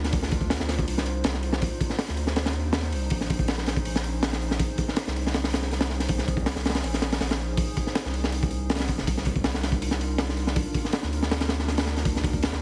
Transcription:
0.00 0.58 D2 medium
0.00 3.07 D4 medium
0.00 9.03 D#4 medium
0.00 3.07 F4 medium
0.04 snare soft
0.04 open hi-hat medium
0.13 9.03 C5 loud
0.13 kick loud
0.13 open hi-hat medium
0.23 snare soft
0.31 kick medium
0.31 open hi-hat medium
0.41 kick loud
0.50 snare loud
0.50 open hi-hat loud
0.60 0.86 D2 medium
0.60 snare medium
0.69 snare soft
0.69 open hi-hat medium
0.79 kick medium
0.87 1.23 C2 medium
0.87 open hi-hat loud
0.98 snare medium
1.06 open hi-hat medium
1.24 1.70 C2 medium
1.24 snare loud
1.24 open hi-hat medium
1.34 snare soft
1.43 open hi-hat medium
1.53 snare medium
1.62 kick loud
1.62 open hi-hat medium
1.81 kick loud
1.81 open hi-hat medium
1.90 snare soft
1.99 snare loud
1.99 open hi-hat medium
2.08 2.57 D2 medium
2.08 snare medium
2.17 open hi-hat medium
2.27 snare soft
2.36 snare loud
2.36 open hi-hat medium
2.46 snare loud
2.46 open hi-hat medium
2.55 2.94 D#2 medium
2.73 snare loud
2.73 open hi-hat medium
2.83 snare soft
2.92 3.09 C2 medium
2.92 open hi-hat medium
3.10 4.68 A#1 loud
3.10 9.03 C#4 medium
3.10 9.03 G#4 medium
3.10 kick loud
3.10 open hi-hat medium
3.21 snare soft
3.30 kick medium
3.30 open hi-hat medium
3.39 kick medium
3.48 snare loud
3.48 open hi-hat medium
3.58 snare medium
3.66 snare medium
3.66 open hi-hat medium
3.76 kick loud
3.85 open hi-hat medium
3.96 snare medium
4.04 open hi-hat medium
4.23 snare loud
4.23 open hi-hat medium
4.33 snare medium
4.42 open hi-hat medium
4.51 snare medium
4.59 kick loud
4.59 open hi-hat loud
4.78 kick loud
4.78 open hi-hat medium
4.88 snare soft
4.96 snare loud
4.96 open hi-hat medium
5.07 6.55 C2 medium
5.07 snare medium
5.16 open hi-hat medium
5.27 snare soft
5.34 snare loud
5.34 open hi-hat medium
5.44 snare loud
5.44 open hi-hat medium
5.53 snare loud
5.53 open hi-hat medium
5.62 snare medium
5.71 snare soft
5.71 open hi-hat medium
5.81 snare loud
5.81 open hi-hat medium
5.90 snare soft
6.00 snare soft
6.00 open hi-hat medium
6.09 kick loud
6.09 open hi-hat loud
6.18 snare soft
6.28 kick loud
6.28 open hi-hat medium
6.37 kick loud
6.46 snare loud
6.46 open hi-hat medium
6.56 6.82 C2 medium
6.56 snare medium
6.65 snare medium
6.65 open hi-hat medium
6.70 snare loud
6.70 open hi-hat medium
6.75 snare loud
6.75 open hi-hat medium
6.84 7.19 A#1 medium
6.84 open hi-hat loud
6.94 snare medium
7.02 snare loud
7.02 open hi-hat medium
7.12 snare loud
7.12 open hi-hat medium
7.21 7.66 A#1 medium
7.21 snare loud
7.21 open hi-hat medium
7.31 snare loud
7.31 open hi-hat medium
7.57 kick loud
7.57 open hi-hat medium
7.77 kick medium
7.77 open hi-hat medium
7.87 snare soft
7.95 snare loud
7.95 open hi-hat medium
8.05 8.90 C2 medium
8.05 snare medium
8.14 open hi-hat medium
8.24 snare medium
8.32 open hi-hat medium
8.43 kick loud
8.51 open hi-hat medium
8.70 snare medium
8.70 open hi-hat medium
8.75 snare medium
8.75 open hi-hat medium
8.79 snare loud
8.79 open hi-hat medium
8.88 8.98 A#1 medium
8.88 kick medium
8.88 open hi-hat medium
8.98 9.06 F1 medium
8.98 snare soft
9.07 10.65 C2 loud
9.07 12.62 D4 medium
9.07 12.62 D#4 medium
9.07 12.02 F4 medium
9.07 12.62 A#4 loud
9.07 kick loud
9.07 open hi-hat medium
9.17 snare soft
9.25 kick medium
9.25 open hi-hat medium
9.36 kick loud
9.44 snare loud
9.44 open hi-hat medium
9.54 snare medium
9.63 snare soft
9.63 open hi-hat medium
9.72 kick medium
9.82 open hi-hat medium
9.91 snare medium
10.01 open hi-hat medium
10.18 snare loud
10.18 open hi-hat medium
10.29 snare soft
10.37 open hi-hat medium
10.47 snare medium
10.56 kick loud
10.56 open hi-hat loud
10.74 kick loud
10.74 open hi-hat medium
10.85 snare soft
10.93 snare loud
10.93 open hi-hat medium
11.03 12.51 D2 medium
11.03 snare medium
11.13 open hi-hat medium
11.23 snare medium
11.31 snare loud
11.31 open hi-hat medium
11.41 snare loud
11.41 open hi-hat medium
11.49 snare loud
11.49 open hi-hat medium
11.59 snare soft
11.68 snare soft
11.68 open hi-hat medium
11.78 snare loud
11.78 open hi-hat medium
11.87 snare medium
11.96 snare soft
11.96 open hi-hat medium
12.05 12.62 G4 medium
12.05 kick loud
12.05 open hi-hat medium
12.16 snare soft
12.24 kick medium
12.24 open hi-hat medium
12.33 kick loud
12.43 snare loud
12.43 open hi-hat loud
12.53 12.62 D2 medium
12.53 snare medium

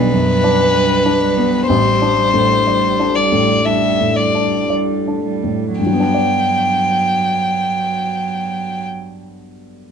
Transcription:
0.00 1.71 B1 soft
0.00 0.26 G3 soft
0.00 1.37 B3 soft
0.00 0.44 D4 soft
0.00 0.75 B4 soft
0.00 1.66 B4 medium
0.13 0.62 F#2 soft
0.27 0.73 G3 soft
0.44 0.93 D4 soft
0.73 1.19 G3 soft
0.73 1.24 B4 soft
1.05 1.55 D4 soft
1.21 1.67 G3 soft
1.37 1.68 B3 soft
1.67 3.61 A1 soft
1.67 2.15 G3 soft
1.67 3.17 C5 medium
2.02 2.53 D4 soft
2.17 2.64 G3 soft
2.34 2.85 A2 soft
2.67 3.14 G3 soft
2.67 3.19 D5 soft
3.00 3.52 D4 soft
3.15 3.64 G3 soft
3.15 3.66 D5 medium
3.32 3.85 A2 soft
3.65 4.15 G3 soft
3.65 4.20 D4 soft
3.65 4.18 E5 medium
4.00 4.55 A2 soft
4.16 4.68 G3 soft
4.16 4.69 D5 soft
4.35 4.91 D4 soft
4.70 5.23 G3 soft
4.70 5.28 D5 soft
5.08 5.65 D4 soft
5.24 5.78 G3 soft
5.44 5.79 A2 soft
5.78 8.85 G2 soft
5.78 8.84 F#3 soft
5.78 8.86 G5 soft
5.86 8.91 F#3 soft
5.93 8.98 B3 soft
6.00 9.05 D4 soft
6.14 9.20 D5 soft

